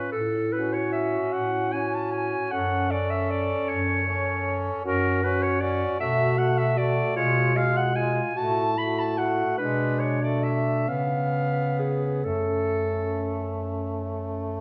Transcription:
Already playing: B4
0.10 A2 A4
0.52 C#4 F#4 B4
0.73 C#5
0.92 E5
1.32 A2 F#5
1.72 C#4 F#4 G#5
1.94 A5
2.12 G#5
2.51 F#2 C#4 A4 F#5
2.89 C#4 A4 D5
3.10 E5
3.30 D5
3.68 F#2 C#5
4.07 C#4 A4
4.84 F#2 C#4 F#4 A#4
5.23 C#4 F#4 B4
5.43 C#5
5.60 C#4 F#4 D5
5.99 B2 A3 F#4 E5
6.37 A3 F#4 F#5
6.58 E5
6.76 A3 F#4 D5
7.15 B2 G#3 F4 C#5
7.55 G#3 F4 F5
7.77 F#5
7.95 G#3 F4 G#5
8.35 A2 A3 F#4 A5
8.77 A3 F#4 B5
8.99 A5
9.17 A3 F#4 F#5
9.58 B2 G#3 D4 B4
9.99 C#5
10.23 A3 D5
10.43 E5
10.88 C#3 B3 C#4 F5
11.79 G#4
12.24 F#2 A3 C#4 A4

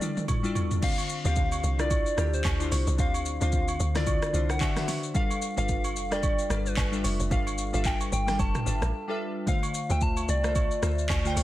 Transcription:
Already playing: E4 F4 A4 B4 D5
0.00 G3 D4 E4 F4 A4 D5, mid tom, shaker
0.17 mid tom, shaker
0.28 kick, mid tom, high agogo, shaker
0.43 G3 D4 E4 F4 A4 D5, shaker
0.55 floor tom, high agogo, shaker
0.71 floor tom, shaker
0.81 D3 C4 D4 F4 C5 F5, kick, crash, shaker
0.98 high agogo, shaker
1.09 shaker
1.24 D2 D3 C4 D4 F4 G4 F5, shaker
1.36 kick, shaker
1.52 high agogo, shaker
1.64 C2, shaker
1.78 D3 D4 E4 F4 D5, cross-stick, shaker
1.91 kick, high agogo, shaker
2.06 shaker
2.16 D2 D3 D4 E4 F4 G4, cross-stick, shaker
2.34 C5, shaker
2.45 D2, kick, clap, high agogo, low woodblock, shaker
2.59 D3 D4 E4 F4 C5, shaker
2.72 C2, open hi-hat, high agogo, shaker
2.87 C2, shaker
2.97 D2 D3 C4 D4 F4 C5 F5, kick, shaker
3.14 high agogo, shaker
3.26 shaker
3.40 D2 D3 C4 D4 F4 C5 F5, shaker
3.52 kick, shaker
3.68 high agogo, shaker
3.80 D2, shaker
3.94 D3 D4 E4 F4 D5, cross-stick, snare, shaker
4.07 kick, high agogo, shaker
4.22 cross-stick, shaker
4.33 C2 D3 D4 E4 F4 C5, shaker
4.50 F#5, cross-stick, shaker
4.60 D3 D4 F#4 B4 C5 E5, kick, clap, high agogo, low woodblock, shaker
4.75 D3 D4 F#4 B4 C5 E5, cross-stick, snare, shaker
4.88 snare, open hi-hat, high agogo, shaker
5.03 shaker
5.14 G3 D4 F4 A4 B4 F5, kick, shaker
5.31 high agogo, shaker
5.42 shaker
5.56 G1 G3 D4 F4 A4 B4 F5, shaker
5.69 kick, shaker
5.84 high agogo, shaker
5.96 F1, shaker
6.11 G3 D4 F4 A4 B4 D5 G5, cross-stick, shaker
6.23 kick, high agogo, shaker
6.39 shaker
6.49 G1 G3 D4 F4 A4 B4 D5, cross-stick, shaker
6.66 B4, shaker
6.77 G1, kick, clap, high agogo, low woodblock, shaker
6.92 G3 D4 F4 A4 B4 E5, shaker
7.04 F1, open hi-hat, high agogo, shaker
7.20 F1, shaker
7.30 G1 G3 D4 F4 A4 B4 F5, kick, shaker
7.47 high agogo, shaker
7.58 shaker
7.73 G1 G3 D4 F4 A4 B4 E5 F5, shaker
7.85 G5, kick, clap, low woodblock, shaker
8.01 high agogo, shaker
8.12 G1 G5, shaker
8.27 G3 D4 F4 A4 B4 G5, cross-stick, snare, shaker
8.39 F1 A5, kick, high agogo, shaker
8.55 cross-stick, mid tom, shaker
8.65 G1 G3 D4 F4 A4 B4 E5, shaker
8.82 A1, cross-stick, shaker
9.08 G3 D4 F4 A4 B4 E5
9.46 D3 A3 F4 C5 F5, kick, shaker
9.63 high agogo, shaker
9.74 shaker
9.89 D2 D3 A3 F4 C5 E5 G5, shaker
10.01 A5, kick, shaker
10.17 high agogo, shaker
10.28 C2 D5, shaker
10.43 D3 A3 F4 C5 E5, cross-stick, shaker
10.55 kick, high agogo, shaker
10.71 shaker
10.82 D2 D3 A3 F4 C5 E5, cross-stick, shaker
10.98 shaker
11.09 D2, kick, clap, high agogo, low woodblock, shaker
11.24 D3 A3 F4 C5 G5, shaker
11.37 C2, open hi-hat, high agogo, shaker

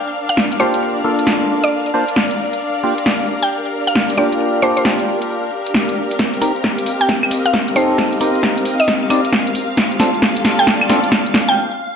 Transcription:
Already playing: D4 A#4 D5 F5 G5
0.29 F5, closed hi-hat
0.37 snare
0.52 closed hi-hat
0.60 A#3 D4 F4 G4 C5
0.74 closed hi-hat
1.04 A#3 D4 F4 A4
1.19 closed hi-hat
1.27 snare
1.64 D5, closed hi-hat
1.86 closed hi-hat
1.94 A#3 D4 F4 C5
2.08 closed hi-hat
2.16 snare
2.31 closed hi-hat
2.53 closed hi-hat
2.75 G4
2.83 A#3 D4 F4 G4
2.98 closed hi-hat
3.06 snare
3.43 G5, closed hi-hat
3.87 F5, closed hi-hat
3.95 snare
4.10 closed hi-hat
4.18 A#3 D4 F4 G4 D5
4.32 closed hi-hat
4.62 A#3 D4 F4 G4 C5
4.77 C5, closed hi-hat
4.85 snare
4.99 closed hi-hat
5.22 closed hi-hat
5.67 closed hi-hat
5.74 snare
5.89 closed hi-hat
6.11 closed hi-hat
6.19 C4 F5, kick, snare, closed hi-hat
6.34 closed hi-hat
6.42 C4 D#4 G4 A#4, open hi-hat
6.56 closed hi-hat
6.64 kick, snare
6.78 closed hi-hat
6.86 D#5, open hi-hat
7.01 G5, closed hi-hat
7.09 kick, snare, closed hi-hat
7.23 claves
7.31 open hi-hat
7.46 F5, closed hi-hat
7.54 kick, snare
7.68 closed hi-hat
7.76 C4 D#4 G4 A4 C5, open hi-hat
7.98 kick, snare, closed hi-hat
8.13 closed hi-hat
8.21 C4 D#4 G4 A#4, open hi-hat
8.35 closed hi-hat
8.43 kick, snare
8.58 closed hi-hat
8.65 open hi-hat
8.80 D#5, closed hi-hat
8.88 kick, snare, closed hi-hat
9.10 C4 D#4 G4 D5, open hi-hat, claves
9.25 closed hi-hat
9.33 kick, snare
9.47 closed hi-hat
9.55 open hi-hat
9.77 kick, snare, closed hi-hat
9.82 F4
9.92 closed hi-hat
10.00 C4 D4 F4 A4, snare, open hi-hat
10.14 A4, closed hi-hat
10.22 kick, snare
10.37 closed hi-hat
10.45 D5, snare, open hi-hat
10.59 G5, closed hi-hat
10.67 kick, snare, closed hi-hat
10.81 claves
10.89 C4 D4 F4 A4, snare, open hi-hat
11.04 closed hi-hat
11.12 kick, snare
11.26 closed hi-hat
11.34 snare, open hi-hat
11.49 G5

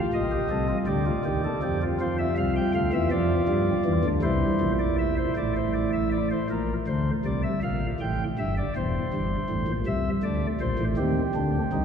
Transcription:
Already playing: F4
0.13 A#1 A#2 D#5
0.31 G4
0.50 C2 C3 A4
0.69 F4
0.87 D2 D3 G4 D5
1.06 F4
1.25 D#2 D#3 G4
1.44 A4
1.62 F2 F3 G4
1.82 F4
2.00 F2 F3 F4 C5
2.19 E5
2.38 C2 C3 F5
2.56 G5
2.75 D2 D3 F5
2.93 E2 E3 E5
3.11 F2 F3 D5
3.48 G2 G3
3.85 E2 E3
4.04 D2 D3
4.22 C2 C3 E4 C5
4.61 A#1 A#2
4.79 D5
4.99 E5
5.17 C5
5.37 A1 A2 D5
5.56 C5
5.74 D5
5.93 E5
6.12 D5
6.31 C5
6.50 A#1 A#2 A#4
6.87 D2 D3 C5
7.25 C2 C3 D5
7.43 E5
7.63 A#1 A#2 F5
8.00 A1 A2 G5
8.39 G1 G2 E5
8.57 D5
8.76 E1 E2 C5
9.13 G1 G2
9.50 A1 A2
9.68 A#1 A#2
9.86 C2 C3 E5
10.23 D2 D3 D5
10.61 A#1 A#2 C5
10.79 A1 A2
10.97 D#2 D#3 C4 G4
11.35 D2 D3 D4
11.72 C2 C3 D#4

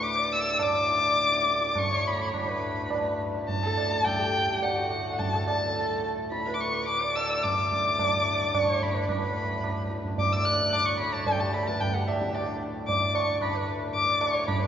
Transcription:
Already playing: D2 A2 B4
0.01 D6, tabla tin
0.16 D5
0.33 E6
0.59 D6, tabla na, tabla ge
0.75 D5
0.89 tabla te
1.18 tabla te
1.32 tabla te
1.47 tabla ke
1.61 tabla te
1.71 D6
1.75 C#6, tabla na, tabla ge
1.91 C#5
2.04 B5, tabla te
2.33 D2 A2 B5, tabla na, tabla ge
2.49 B4
2.90 tabla na, tabla ge
3.20 tabla ge
3.49 A5, tabla tin, tabla ge
3.63 A4
3.78 tabla na
3.92 tabla ke
4.05 G5, tabla na, tabla ge
4.19 G4
4.34 tabla te
4.48 tabla ge
4.62 F#5, tabla tin, tabla ge
4.76 F#4
4.91 tabla na
5.19 A5, tabla tin, tabla ge
5.34 A4
5.47 A5, tabla na
5.63 A4
5.76 tabla te
6.04 tabla te
6.31 B5, tabla te
6.46 B4, tabla te
6.54 D6
6.61 C#6, tabla ke
6.75 tabla te
6.88 D6, tabla tin
7.01 D5
7.16 E6, tabla na
7.43 D6, tabla na, tabla ge
7.59 D5
7.72 tabla ge
7.99 tabla na, tabla ge
8.28 tabla te
8.55 C#6, tabla na, tabla ge
8.68 C#5
8.82 B5, tabla ge
8.95 B4
9.08 D2 A2 B5, tabla na, tabla ge
9.23 B4
9.64 tabla na, tabla ge
9.91 tabla te
10.05 tabla ge
10.18 D6, tabla tin, tabla ge
10.32 D5 E6
10.36 D6 E6
10.45 F#6, tabla na
10.73 D6, tabla na, tabla ge
10.86 D5 C#6
11.00 C#5 B5, tabla te
11.13 A5, tabla ge
11.27 A4 G5, tabla tin, tabla ge
11.40 G4 A5
11.53 A4 B5, tabla na
11.67 B4 A5, tabla ke
11.80 G5, tabla tin, tabla ge
11.94 G4 F#5
12.08 E5, tabla na
12.22 tabla ke
12.35 D5, tabla na
12.48 D4
12.88 D6, tabla tin, tabla ge
13.02 D5
13.15 C#6, tabla na
13.41 B5, tabla na, tabla ge
13.55 B4
13.95 D6, tabla tin, tabla ge
14.07 D5
14.21 C#6, tabla na
14.34 C#5
14.47 B5, tabla na, tabla ge
14.60 B4

